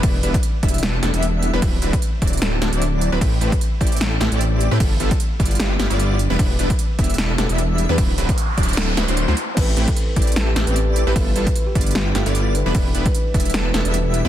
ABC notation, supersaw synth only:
X:1
M:4/4
L:1/16
Q:"Swing 16ths" 1/4=151
K:Am
V:1 name="Supersaw synth"
G, z [G,B,DEB] z3 [G,B,DEe]2 [G,B,DEA] z [G,B,DEA] [G,B,DEe]4 [G,B,DEB] | [^F,DB] z [F,CDEB] z3 [F,CDEd]2 [F,CDEA] z [F,CDEA] [F,CDEd]4 [F,CDEB] | z2 [A,CEGB] z3 [A,CEGd]2 [A,CEGA] z [A,CEGA] [A,CEGd]4 [A,CEGB] | [G,B,EF] z [G,B,EFA] z3 [G,B,EFd]2 [G,B,EFG] z [G,B,EFG] [G,B,EFd]3 z [G,B,DEB] |
[G,B,EB] z [G,B,DEB] z3 [G,B,DEe]2 [G,B,DEA] z [G,B,DEA] [G,B,DEe]4 [G,B,DEB] | z2 [^F,CDEB] z3 [F,CDEd]2 [F,CDEA] z [F,CDEB] [F,CDEc]2 [F,CDEc] z2 | [A,CEGB] z [A,CEGB] z3 [A,CEGd]2 [A,CEGA] z [A,CEGA] [A,CEGd]4 [A,CEGB] | [G,B,] z [G,B,EFA] z3 [G,B,EFd]2 [G,B,EFG] z [G,B,EFG] [G,B,EFd]3 z [G,B,DEB] |
[G,B,DEB] z [G,B,DEB] z3 [G,B,DEe]2 [G,B,DEA] z [G,B,DEA] [G,B,DEe]4 [G,B,DEB] |]